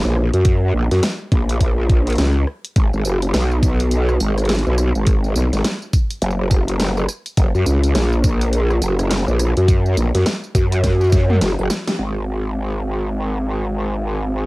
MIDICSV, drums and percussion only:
0, 0, Header, 1, 2, 480
1, 0, Start_track
1, 0, Tempo, 576923
1, 377, Time_signature, 4, 2, 24, 8
1, 12032, End_track
2, 0, Start_track
2, 0, Title_t, "Drums"
2, 136, Note_on_c, 9, 37, 38
2, 219, Note_off_c, 9, 37, 0
2, 280, Note_on_c, 9, 42, 51
2, 363, Note_off_c, 9, 42, 0
2, 374, Note_on_c, 9, 42, 62
2, 377, Note_on_c, 9, 36, 120
2, 457, Note_off_c, 9, 42, 0
2, 460, Note_off_c, 9, 36, 0
2, 761, Note_on_c, 9, 38, 37
2, 761, Note_on_c, 9, 42, 52
2, 844, Note_off_c, 9, 38, 0
2, 844, Note_off_c, 9, 42, 0
2, 856, Note_on_c, 9, 38, 115
2, 856, Note_on_c, 9, 42, 62
2, 939, Note_off_c, 9, 38, 0
2, 939, Note_off_c, 9, 42, 0
2, 1097, Note_on_c, 9, 36, 112
2, 1098, Note_on_c, 9, 42, 36
2, 1180, Note_off_c, 9, 36, 0
2, 1181, Note_off_c, 9, 42, 0
2, 1242, Note_on_c, 9, 42, 52
2, 1326, Note_off_c, 9, 42, 0
2, 1336, Note_on_c, 9, 42, 64
2, 1337, Note_on_c, 9, 36, 63
2, 1419, Note_off_c, 9, 42, 0
2, 1420, Note_off_c, 9, 36, 0
2, 1577, Note_on_c, 9, 36, 104
2, 1578, Note_on_c, 9, 42, 35
2, 1660, Note_off_c, 9, 36, 0
2, 1661, Note_off_c, 9, 42, 0
2, 1722, Note_on_c, 9, 42, 47
2, 1747, Note_off_c, 9, 42, 0
2, 1747, Note_on_c, 9, 42, 39
2, 1768, Note_off_c, 9, 42, 0
2, 1768, Note_on_c, 9, 42, 32
2, 1793, Note_off_c, 9, 42, 0
2, 1793, Note_on_c, 9, 42, 27
2, 1816, Note_off_c, 9, 42, 0
2, 1816, Note_on_c, 9, 38, 115
2, 1816, Note_on_c, 9, 42, 60
2, 1899, Note_off_c, 9, 38, 0
2, 1899, Note_off_c, 9, 42, 0
2, 2057, Note_on_c, 9, 37, 35
2, 2140, Note_off_c, 9, 37, 0
2, 2201, Note_on_c, 9, 42, 51
2, 2284, Note_off_c, 9, 42, 0
2, 2296, Note_on_c, 9, 42, 59
2, 2296, Note_on_c, 9, 54, 42
2, 2298, Note_on_c, 9, 36, 114
2, 2380, Note_off_c, 9, 42, 0
2, 2380, Note_off_c, 9, 54, 0
2, 2381, Note_off_c, 9, 36, 0
2, 2441, Note_on_c, 9, 54, 20
2, 2524, Note_off_c, 9, 54, 0
2, 2536, Note_on_c, 9, 54, 72
2, 2619, Note_off_c, 9, 54, 0
2, 2681, Note_on_c, 9, 42, 48
2, 2681, Note_on_c, 9, 54, 31
2, 2764, Note_off_c, 9, 42, 0
2, 2764, Note_off_c, 9, 54, 0
2, 2777, Note_on_c, 9, 38, 113
2, 2777, Note_on_c, 9, 42, 60
2, 2777, Note_on_c, 9, 54, 38
2, 2860, Note_off_c, 9, 38, 0
2, 2860, Note_off_c, 9, 42, 0
2, 2860, Note_off_c, 9, 54, 0
2, 2923, Note_on_c, 9, 54, 21
2, 3006, Note_off_c, 9, 54, 0
2, 3017, Note_on_c, 9, 54, 73
2, 3018, Note_on_c, 9, 36, 105
2, 3100, Note_off_c, 9, 54, 0
2, 3101, Note_off_c, 9, 36, 0
2, 3161, Note_on_c, 9, 42, 50
2, 3161, Note_on_c, 9, 54, 30
2, 3244, Note_off_c, 9, 42, 0
2, 3244, Note_off_c, 9, 54, 0
2, 3255, Note_on_c, 9, 42, 62
2, 3255, Note_on_c, 9, 54, 43
2, 3338, Note_off_c, 9, 42, 0
2, 3338, Note_off_c, 9, 54, 0
2, 3400, Note_on_c, 9, 37, 52
2, 3400, Note_on_c, 9, 54, 21
2, 3484, Note_off_c, 9, 37, 0
2, 3484, Note_off_c, 9, 54, 0
2, 3496, Note_on_c, 9, 42, 35
2, 3496, Note_on_c, 9, 54, 72
2, 3580, Note_off_c, 9, 42, 0
2, 3580, Note_off_c, 9, 54, 0
2, 3641, Note_on_c, 9, 37, 35
2, 3641, Note_on_c, 9, 42, 22
2, 3641, Note_on_c, 9, 54, 31
2, 3657, Note_off_c, 9, 42, 0
2, 3657, Note_on_c, 9, 42, 27
2, 3704, Note_off_c, 9, 42, 0
2, 3704, Note_on_c, 9, 42, 30
2, 3724, Note_off_c, 9, 37, 0
2, 3724, Note_off_c, 9, 54, 0
2, 3736, Note_off_c, 9, 42, 0
2, 3736, Note_on_c, 9, 38, 115
2, 3736, Note_on_c, 9, 42, 61
2, 3784, Note_off_c, 9, 42, 0
2, 3784, Note_on_c, 9, 42, 37
2, 3816, Note_off_c, 9, 42, 0
2, 3816, Note_on_c, 9, 42, 41
2, 3819, Note_off_c, 9, 38, 0
2, 3881, Note_on_c, 9, 54, 21
2, 3899, Note_off_c, 9, 42, 0
2, 3965, Note_off_c, 9, 54, 0
2, 3975, Note_on_c, 9, 37, 38
2, 3975, Note_on_c, 9, 54, 71
2, 4059, Note_off_c, 9, 37, 0
2, 4059, Note_off_c, 9, 54, 0
2, 4120, Note_on_c, 9, 54, 32
2, 4203, Note_off_c, 9, 54, 0
2, 4214, Note_on_c, 9, 42, 64
2, 4214, Note_on_c, 9, 54, 43
2, 4217, Note_on_c, 9, 36, 111
2, 4297, Note_off_c, 9, 42, 0
2, 4297, Note_off_c, 9, 54, 0
2, 4301, Note_off_c, 9, 36, 0
2, 4359, Note_on_c, 9, 54, 21
2, 4443, Note_off_c, 9, 54, 0
2, 4455, Note_on_c, 9, 54, 75
2, 4538, Note_off_c, 9, 54, 0
2, 4600, Note_on_c, 9, 38, 35
2, 4600, Note_on_c, 9, 42, 50
2, 4600, Note_on_c, 9, 54, 31
2, 4683, Note_off_c, 9, 38, 0
2, 4683, Note_off_c, 9, 42, 0
2, 4683, Note_off_c, 9, 54, 0
2, 4695, Note_on_c, 9, 38, 111
2, 4695, Note_on_c, 9, 42, 61
2, 4695, Note_on_c, 9, 54, 43
2, 4779, Note_off_c, 9, 38, 0
2, 4779, Note_off_c, 9, 42, 0
2, 4779, Note_off_c, 9, 54, 0
2, 4841, Note_on_c, 9, 54, 21
2, 4924, Note_off_c, 9, 54, 0
2, 4935, Note_on_c, 9, 54, 76
2, 4937, Note_on_c, 9, 36, 102
2, 5019, Note_off_c, 9, 54, 0
2, 5020, Note_off_c, 9, 36, 0
2, 5080, Note_on_c, 9, 42, 49
2, 5080, Note_on_c, 9, 54, 34
2, 5163, Note_off_c, 9, 42, 0
2, 5163, Note_off_c, 9, 54, 0
2, 5174, Note_on_c, 9, 42, 59
2, 5174, Note_on_c, 9, 54, 43
2, 5247, Note_off_c, 9, 54, 0
2, 5247, Note_on_c, 9, 54, 22
2, 5257, Note_off_c, 9, 42, 0
2, 5330, Note_off_c, 9, 54, 0
2, 5414, Note_on_c, 9, 42, 35
2, 5414, Note_on_c, 9, 54, 74
2, 5416, Note_on_c, 9, 36, 97
2, 5498, Note_off_c, 9, 42, 0
2, 5498, Note_off_c, 9, 54, 0
2, 5500, Note_off_c, 9, 36, 0
2, 5560, Note_on_c, 9, 42, 51
2, 5560, Note_on_c, 9, 54, 32
2, 5643, Note_off_c, 9, 42, 0
2, 5643, Note_off_c, 9, 54, 0
2, 5655, Note_on_c, 9, 38, 109
2, 5655, Note_on_c, 9, 42, 58
2, 5655, Note_on_c, 9, 54, 43
2, 5738, Note_off_c, 9, 38, 0
2, 5738, Note_off_c, 9, 42, 0
2, 5738, Note_off_c, 9, 54, 0
2, 5800, Note_on_c, 9, 54, 22
2, 5883, Note_off_c, 9, 54, 0
2, 5895, Note_on_c, 9, 37, 39
2, 5895, Note_on_c, 9, 54, 75
2, 5978, Note_off_c, 9, 37, 0
2, 5978, Note_off_c, 9, 54, 0
2, 6040, Note_on_c, 9, 42, 49
2, 6040, Note_on_c, 9, 54, 31
2, 6123, Note_off_c, 9, 42, 0
2, 6123, Note_off_c, 9, 54, 0
2, 6134, Note_on_c, 9, 42, 64
2, 6134, Note_on_c, 9, 54, 45
2, 6136, Note_on_c, 9, 36, 112
2, 6217, Note_off_c, 9, 42, 0
2, 6217, Note_off_c, 9, 54, 0
2, 6219, Note_off_c, 9, 36, 0
2, 6280, Note_on_c, 9, 54, 22
2, 6363, Note_off_c, 9, 54, 0
2, 6375, Note_on_c, 9, 54, 75
2, 6458, Note_off_c, 9, 54, 0
2, 6519, Note_on_c, 9, 42, 52
2, 6519, Note_on_c, 9, 54, 35
2, 6602, Note_off_c, 9, 42, 0
2, 6602, Note_off_c, 9, 54, 0
2, 6614, Note_on_c, 9, 38, 109
2, 6614, Note_on_c, 9, 42, 60
2, 6614, Note_on_c, 9, 54, 43
2, 6698, Note_off_c, 9, 38, 0
2, 6698, Note_off_c, 9, 42, 0
2, 6698, Note_off_c, 9, 54, 0
2, 6760, Note_on_c, 9, 54, 21
2, 6843, Note_off_c, 9, 54, 0
2, 6854, Note_on_c, 9, 54, 81
2, 6856, Note_on_c, 9, 36, 100
2, 6937, Note_off_c, 9, 54, 0
2, 6939, Note_off_c, 9, 36, 0
2, 7000, Note_on_c, 9, 42, 52
2, 7000, Note_on_c, 9, 54, 34
2, 7083, Note_off_c, 9, 42, 0
2, 7083, Note_off_c, 9, 54, 0
2, 7095, Note_on_c, 9, 42, 62
2, 7095, Note_on_c, 9, 54, 44
2, 7178, Note_off_c, 9, 42, 0
2, 7178, Note_off_c, 9, 54, 0
2, 7241, Note_on_c, 9, 37, 54
2, 7241, Note_on_c, 9, 54, 23
2, 7324, Note_off_c, 9, 37, 0
2, 7324, Note_off_c, 9, 54, 0
2, 7336, Note_on_c, 9, 42, 35
2, 7336, Note_on_c, 9, 54, 76
2, 7419, Note_off_c, 9, 42, 0
2, 7419, Note_off_c, 9, 54, 0
2, 7480, Note_on_c, 9, 37, 37
2, 7480, Note_on_c, 9, 42, 51
2, 7480, Note_on_c, 9, 54, 31
2, 7563, Note_off_c, 9, 37, 0
2, 7563, Note_off_c, 9, 42, 0
2, 7563, Note_off_c, 9, 54, 0
2, 7576, Note_on_c, 9, 38, 110
2, 7576, Note_on_c, 9, 42, 63
2, 7576, Note_on_c, 9, 54, 40
2, 7659, Note_off_c, 9, 38, 0
2, 7659, Note_off_c, 9, 42, 0
2, 7659, Note_off_c, 9, 54, 0
2, 7721, Note_on_c, 9, 54, 23
2, 7804, Note_off_c, 9, 54, 0
2, 7815, Note_on_c, 9, 37, 42
2, 7815, Note_on_c, 9, 54, 80
2, 7898, Note_off_c, 9, 37, 0
2, 7898, Note_off_c, 9, 54, 0
2, 7960, Note_on_c, 9, 42, 50
2, 7960, Note_on_c, 9, 54, 32
2, 8044, Note_off_c, 9, 42, 0
2, 8044, Note_off_c, 9, 54, 0
2, 8057, Note_on_c, 9, 36, 110
2, 8057, Note_on_c, 9, 42, 65
2, 8057, Note_on_c, 9, 54, 41
2, 8140, Note_off_c, 9, 36, 0
2, 8141, Note_off_c, 9, 42, 0
2, 8141, Note_off_c, 9, 54, 0
2, 8202, Note_on_c, 9, 54, 22
2, 8285, Note_off_c, 9, 54, 0
2, 8296, Note_on_c, 9, 42, 38
2, 8296, Note_on_c, 9, 54, 73
2, 8380, Note_off_c, 9, 42, 0
2, 8380, Note_off_c, 9, 54, 0
2, 8442, Note_on_c, 9, 38, 35
2, 8442, Note_on_c, 9, 42, 55
2, 8442, Note_on_c, 9, 54, 32
2, 8525, Note_off_c, 9, 38, 0
2, 8525, Note_off_c, 9, 42, 0
2, 8525, Note_off_c, 9, 54, 0
2, 8536, Note_on_c, 9, 38, 108
2, 8536, Note_on_c, 9, 42, 65
2, 8536, Note_on_c, 9, 54, 43
2, 8619, Note_off_c, 9, 38, 0
2, 8619, Note_off_c, 9, 42, 0
2, 8619, Note_off_c, 9, 54, 0
2, 8682, Note_on_c, 9, 54, 21
2, 8766, Note_off_c, 9, 54, 0
2, 8777, Note_on_c, 9, 36, 104
2, 8777, Note_on_c, 9, 42, 38
2, 8777, Note_on_c, 9, 54, 73
2, 8860, Note_off_c, 9, 36, 0
2, 8860, Note_off_c, 9, 42, 0
2, 8860, Note_off_c, 9, 54, 0
2, 8922, Note_on_c, 9, 42, 55
2, 8922, Note_on_c, 9, 54, 32
2, 9005, Note_off_c, 9, 42, 0
2, 9005, Note_off_c, 9, 54, 0
2, 9017, Note_on_c, 9, 36, 60
2, 9017, Note_on_c, 9, 38, 61
2, 9017, Note_on_c, 9, 42, 66
2, 9017, Note_on_c, 9, 54, 42
2, 9100, Note_off_c, 9, 36, 0
2, 9100, Note_off_c, 9, 38, 0
2, 9100, Note_off_c, 9, 42, 0
2, 9100, Note_off_c, 9, 54, 0
2, 9161, Note_on_c, 9, 54, 21
2, 9184, Note_off_c, 9, 54, 0
2, 9184, Note_on_c, 9, 54, 16
2, 9210, Note_off_c, 9, 54, 0
2, 9210, Note_on_c, 9, 54, 13
2, 9233, Note_off_c, 9, 54, 0
2, 9233, Note_on_c, 9, 54, 12
2, 9255, Note_off_c, 9, 54, 0
2, 9255, Note_on_c, 9, 38, 58
2, 9255, Note_on_c, 9, 42, 36
2, 9255, Note_on_c, 9, 54, 78
2, 9257, Note_on_c, 9, 36, 96
2, 9338, Note_off_c, 9, 38, 0
2, 9338, Note_off_c, 9, 42, 0
2, 9338, Note_off_c, 9, 54, 0
2, 9340, Note_off_c, 9, 36, 0
2, 9402, Note_on_c, 9, 47, 68
2, 9485, Note_off_c, 9, 47, 0
2, 9497, Note_on_c, 9, 38, 85
2, 9497, Note_on_c, 9, 42, 61
2, 9497, Note_on_c, 9, 54, 42
2, 9580, Note_off_c, 9, 38, 0
2, 9580, Note_off_c, 9, 42, 0
2, 9580, Note_off_c, 9, 54, 0
2, 9642, Note_on_c, 9, 54, 21
2, 9725, Note_off_c, 9, 54, 0
2, 9735, Note_on_c, 9, 38, 94
2, 9735, Note_on_c, 9, 54, 76
2, 9818, Note_off_c, 9, 38, 0
2, 9818, Note_off_c, 9, 54, 0
2, 9880, Note_on_c, 9, 38, 83
2, 9880, Note_on_c, 9, 42, 53
2, 9880, Note_on_c, 9, 54, 32
2, 9964, Note_off_c, 9, 38, 0
2, 9964, Note_off_c, 9, 42, 0
2, 9964, Note_off_c, 9, 54, 0
2, 12032, End_track
0, 0, End_of_file